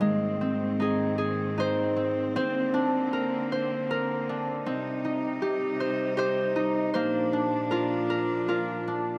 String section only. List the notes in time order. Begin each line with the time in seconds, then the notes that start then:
0.01 G#2 D#3 C4
2.34 D3 A#3
4.67 C3 G3 D#4
6.95 A#2 F3 D4